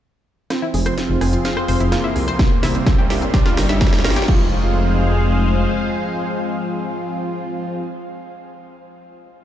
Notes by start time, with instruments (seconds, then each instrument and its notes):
0.50 analog polysynth C4, synth arpeggio sound F4, analog synth pad G#4 C5 F5 C6, ambient pad G#4, cross-stick, snare, closed hi-hat, riser
0.62 synth arpeggio sound E4
0.74 detuned saw bass F1, analog synth pad F3 C4 F4, synth arpeggio sound G#4, open hi-hat
0.86 synth arpeggio sound C5, ambient pad F5, cross-stick, closed hi-hat
0.98 snare, closed hi-hat
1.09 detuned saw bass F1
1.21 detuned saw bass F1, synth arpeggio sound G#4, cross-stick, open hi-hat
1.33 synth arpeggio sound F4, closed hi-hat
1.45 synth arpeggio sound F5, snare, closed hi-hat
1.57 synth arpeggio sound C5, cross-stick
1.68 detuned saw bass F1, analog synth pad F3 C4 F4, synth arpeggio sound C5, open hi-hat
1.80 detuned saw bass F1, synth arpeggio sound E4, closed hi-hat
1.92 analog polysynth A#3, synth arpeggio sound F4, cross-stick, snare, closed hi-hat
2.04 synth arpeggio sound E4
2.16 detuned saw bass C2, synth arpeggio sound G#4, open hi-hat
2.28 synth arpeggio sound C5, cross-stick, closed hi-hat
2.39 analog synth pad G4 E5, ambient pad G4, kick, snare, closed hi-hat
2.63 detuned saw bass C2, analog synth pad C3 G3 C4, synth arpeggio sound E4, snare, open hi-hat
2.75 synth arpeggio sound C4, closed hi-hat
2.87 synth arpeggio sound C5, kick, snare, closed hi-hat
2.98 detuned saw bass C2, synth arpeggio sound G4
3.10 detuned saw bass C2, synth arpeggio sound G4, snare, open hi-hat
3.22 synth arpeggio sound A#3, closed hi-hat
3.34 analog polysynth G3, synth arpeggio sound G4, analog synth pad A#4 C#5 G5 C#6, kick, snare, closed hi-hat
3.46 synth arpeggio sound F4, ambient pad F5, snare
3.57 detuned saw bass G1, analog synth pad G3 C#4 G4, synth arpeggio sound A#4, snare, open hi-hat
3.69 detuned saw bass G1, synth arpeggio sound E5, snare, closed hi-hat
3.81 kick, snare, closed hi-hat
3.87 snare
3.93 snare
3.99 snare
4.04 detuned saw bass G1, synth arpeggio sound A#4, snare, open hi-hat
4.10 snare
4.16 synth arpeggio sound G4, snare, closed hi-hat
4.22 snare
4.28 detuned saw bass F1, analog synth pad F3 C4 F4 G#4 C5 F5, analog polysynth G#3, synth arpeggio sound F4, ambient pad C5, kick, crash
4.36 ambient pad F5
4.43 ambient pad G#5